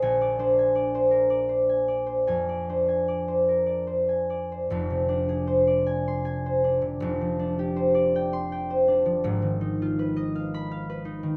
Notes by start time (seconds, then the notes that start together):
Already playing: C5 A#5
0.02 A#1 G#5
0.21 D5
0.39 D4 C5
0.59 G#5
0.75 D5
0.95 C5
1.11 A#4
1.30 D5
1.49 C5
1.69 G#5
1.88 D5
2.06 C5
2.27 F2 G#5
2.49 D5
2.69 D4 C5
2.88 G#5
3.08 D5
3.28 C5
3.48 A#4
3.66 D5
3.87 C5
4.09 G#5
4.30 D5
4.52 C5
4.70 F1 F2
4.90 C3
5.09 D4
5.29 G#4
5.47 C5
5.67 D5
5.86 G#5
6.08 C6
6.25 G#5
6.46 C5
6.64 D4
6.82 C3
7.00 F1 F2
7.21 F3
7.39 D4
7.59 G4
7.76 C5
7.94 D5
8.16 G5
8.33 C6
8.52 G5
8.70 C5
8.88 D4
9.06 F3
9.24 G#1 G#2
9.42 D#3
9.61 D#4
9.82 F4
9.99 B4
10.16 D#5
10.35 F5
10.54 B5
10.71 F5
10.89 B4
11.05 D#4
11.23 D#3